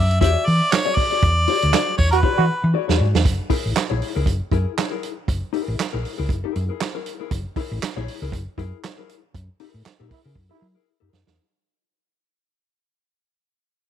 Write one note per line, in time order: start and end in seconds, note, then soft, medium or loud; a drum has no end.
0.00 0.19 F#2 medium
0.00 0.20 E5 medium
0.11 closed hi-hat medium
0.21 0.34 E2 loud
0.21 0.42 F#4 medium
0.21 0.42 G#4 loud
0.21 0.43 D5 medium
0.21 0.48 E5 loud
0.21 kick medium
0.21 closed hi-hat loud
0.46 0.60 E3 medium
0.46 0.73 D5 medium
0.46 open hi-hat soft
0.72 0.97 C#5 loud
0.72 snare loud
0.72 clap medium
0.72 closed hi-hat medium
0.86 1.04 F#4 medium
0.86 1.03 G#4 medium
0.86 1.03 D5 medium
0.96 1.97 D5 medium
0.96 kick loud
0.96 open hi-hat medium
1.11 1.25 F#4 soft
1.11 1.25 G#4 medium
1.11 1.24 D5 medium
1.22 1.45 E2 loud
1.22 kick loud
1.22 closed hi-hat medium
1.47 1.69 F#4 medium
1.47 1.69 G#4 medium
1.47 1.69 D5 medium
1.47 open hi-hat medium
1.62 1.73 D2 medium
1.62 closed hi-hat medium
1.73 1.92 F#4 medium
1.73 1.92 G#4 medium
1.73 1.93 D5 medium
1.73 snare loud
1.73 clap medium
1.73 closed hi-hat loud
1.98 2.22 E2 medium
1.98 2.11 C#5 medium
1.98 kick loud
1.98 open hi-hat medium
2.11 2.20 F#4 loud
2.11 2.70 B4 medium
2.11 closed hi-hat medium
2.23 2.44 F#4 medium
2.23 2.45 G#4 medium
2.23 2.45 D5 loud
2.23 kick loud
2.38 2.48 E3 loud
2.38 2.45 F#4 loud
2.64 2.74 E3 loud
2.74 2.89 F#4 medium
2.74 2.88 G#4 medium
2.74 2.87 D5 medium
2.88 2.99 E2 medium
2.88 3.09 F#4 medium
2.88 3.08 G#4 medium
2.88 3.08 D5 medium
2.88 snare medium
3.00 3.13 G#2 medium
3.15 3.24 E2 loud
3.15 snare loud
3.25 3.38 F#1 loud
3.25 kick loud
3.25 closed hi-hat loud
3.50 3.69 E4 medium
3.50 3.69 G#4 medium
3.50 3.69 A#4 medium
3.50 kick loud
3.50 open hi-hat medium
3.66 3.75 A1 medium
3.76 snare loud
3.76 clap medium
3.76 closed hi-hat loud
3.90 4.01 A#1 medium
3.90 4.08 E4 medium
3.90 4.07 G#4 medium
3.90 4.07 C#5 medium
4.02 open hi-hat medium
4.15 4.26 C#2 medium
4.15 4.29 E4 medium
4.15 4.29 G#4 medium
4.15 4.28 A#4 medium
4.26 4.39 F#1 loud
4.26 kick medium
4.26 closed hi-hat loud
4.51 4.65 F#2 loud
4.51 4.71 E4 medium
4.51 4.71 G#4 medium
4.51 4.72 A#4 medium
4.51 kick loud
4.51 closed hi-hat soft
4.77 4.91 E4 medium
4.77 4.90 G#4 medium
4.77 4.91 C#5 medium
4.77 snare loud
4.77 clap medium
4.77 closed hi-hat medium
4.91 5.09 E4 medium
4.91 5.09 G#4 medium
4.91 5.08 A#4 medium
5.03 closed hi-hat medium
5.28 5.41 F#1 loud
5.28 kick loud
5.28 closed hi-hat loud
5.53 5.74 E4 medium
5.53 5.74 G#4 medium
5.53 5.74 A#4 medium
5.53 open hi-hat medium
5.68 5.78 A1 medium
5.80 snare loud
5.80 clap medium
5.80 closed hi-hat loud
5.93 6.04 A#1 medium
5.93 6.11 E4 medium
5.93 6.11 G#4 medium
5.93 6.10 A#4 medium
6.05 open hi-hat medium
6.18 6.29 C#2 medium
6.18 6.32 E4 medium
6.18 6.31 G#4 medium
6.18 6.31 A#4 medium
6.29 6.42 F#1 loud
6.29 kick loud
6.29 closed hi-hat medium
6.44 6.64 E4 medium
6.44 6.64 G#4 medium
6.44 6.63 A#4 medium
6.56 6.68 F#2 loud
6.56 closed hi-hat medium
6.69 6.83 E4 medium
6.69 6.82 G#4 medium
6.69 6.82 A#4 medium
6.80 snare loud
6.80 clap medium
6.80 closed hi-hat medium
6.95 7.12 E4 medium
6.95 7.12 G#4 medium
6.95 7.12 A#4 medium
7.06 closed hi-hat medium
7.20 7.33 E4 medium
7.20 7.33 G#4 medium
7.20 7.32 A#4 medium
7.31 7.44 F#1 loud
7.31 kick loud
7.31 closed hi-hat medium
7.56 7.75 E4 medium
7.56 7.76 G#4 medium
7.56 7.76 A#4 medium
7.56 kick medium
7.56 open hi-hat medium
7.72 7.81 A1 medium
7.83 snare loud
7.83 clap medium
7.83 closed hi-hat loud
7.96 8.07 A#1 medium
7.96 8.14 E4 medium
7.96 8.14 G#4 medium
7.96 8.13 C#5 medium
8.08 open hi-hat medium
8.22 8.32 C#2 medium
8.22 8.35 E4 soft
8.22 8.35 G#4 medium
8.22 8.34 A#4 medium
8.32 8.45 F#1 loud
8.32 kick medium
8.32 closed hi-hat medium
8.58 8.71 F#2 medium
8.58 8.77 E4 medium
8.58 8.77 G#4 medium
8.58 8.77 A#4 medium
8.58 kick medium
8.58 closed hi-hat soft
8.83 8.98 E4 medium
8.83 8.97 G#4 medium
8.83 8.98 C#5 medium
8.83 snare loud
8.83 clap medium
8.83 closed hi-hat medium
8.98 9.16 E4 medium
8.98 9.15 G#4 medium
8.98 9.15 A#4 medium
9.09 closed hi-hat medium
9.35 9.47 F#2 loud
9.35 kick loud
9.35 closed hi-hat medium
9.60 9.81 E4 medium
9.60 9.81 G#4 medium
9.60 9.81 A#4 medium
9.60 open hi-hat medium
9.74 9.84 A2 medium
9.86 snare loud
9.86 clap medium
9.86 closed hi-hat medium
10.00 10.10 A#2 medium
10.00 10.20 E4 medium
10.00 10.19 G#4 medium
10.00 10.19 A#4 medium
10.11 10.20 E4 medium
10.11 kick medium
10.11 open hi-hat medium
10.25 10.35 C#3 medium
10.25 10.38 E4 medium
10.25 10.38 G#4 medium
10.25 10.38 A#4 medium
10.35 10.49 F#2 medium
10.35 kick medium
10.49 10.67 E4 loud
10.49 10.70 E4 medium
10.49 10.70 G#4 medium
10.49 10.69 A#4 medium
10.62 10.75 F#3 loud
10.75 10.89 E4 soft
10.75 10.88 G#4 medium
10.75 10.88 A#4 medium
11.00 11.12 F#2 medium
11.00 11.21 E4 medium
11.00 11.21 G#4 medium
11.00 11.20 A#4 medium
11.13 11.26 F#2 medium
11.13 snare medium
11.26 11.37 E2 medium
11.26 11.40 E4 medium
11.26 11.39 G#4 medium
11.26 11.39 A#4 medium
11.26 snare medium